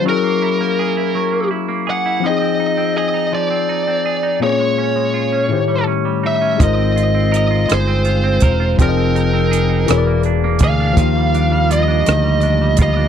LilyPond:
<<
  \new Staff \with { instrumentName = "Lead electric guitar" } { \time 6/8 \key ees \major \tempo 4. = 55 bes'2 r8 ges''8 | ees''4 ees''8 d''4. | des''2 r8 e''8 | ees''4 ees''8 c''4. |
bes'2 r8 f''8~ | f''4 ees''4. ees''8 | }
  \new Staff \with { instrumentName = "Tine electric piano" } { \time 6/8 \key ees \major <ges des' fes' aes' bes'>2. | <f c' ees' aes' g''>2. | <bes, bes c' des' aes' des''>4. <a, dis a g' c'' cis''>4. | <aes ees' f' bes' c''>2. |
<f c' aes' d'' ees'' g''>4. <b, e gis' ais' des'' d''>4. | <f bes f' g' f''>2. | }
  \new Staff \with { instrumentName = "Tonewheel organ" } { \time 6/8 \key ees \major r2. | r2. | r2. | <aes c' f'>2. |
<f ees' aes' g''>4. <b, e ais'>4. | <f bes f' g'>2. | }
  \new Staff \with { instrumentName = "Clean electric guitar" } { \time 6/8 \key ees \major ges16 bes16 fes'16 bes16 aes'16 fes'16 ges16 bes16 fes'16 bes16 aes'16 fes'16 | f16 c'16 ees'16 c'16 aes'16 ees'16 f16 c'16 ees'16 c'16 aes'16 ees'16 | bes,16 aes16 des'16 aes16 f'16 des'16 a,16 g16 cis'16 g16 dis'16 cis'16 | aes16 c'16 f'16 c'16 bes'16 f'16 aes16 c'16 f'16 c'16 bes'16 f'16 |
f16 c'16 ees'16 c'16 aes'16 ees'16 e16 ais16 d'16 ais16 gis'16 d'16 | ees16 g16 d'16 g16 f'16 d'16 ees16 g16 d'16 g16 f'16 d'16 | }
  \new Staff \with { instrumentName = "Fingered electric bass" } { \clef bass \time 6/8 \key ees \major r2. | r2. | r2. | aes,,4. g,,4 fes,,8 |
f,,4. e,,4 d,8 | ees,4. d,4 d,8 | }
  \new DrumStaff \with { instrumentName = "Drums" } \drummode { \time 6/8 r4. r4. | r4. r4. | r4. r4. | <hh bd>8 hh8 hh8 <hh ss>8 hh8 <hh bd>8 |
<hh bd>8 hh8 hh8 <hh ss>8 hh8 <hh bd>8 | <hh bd>8 hh8 hh8 <hh ss>8 hh8 <hh bd>8 | }
>>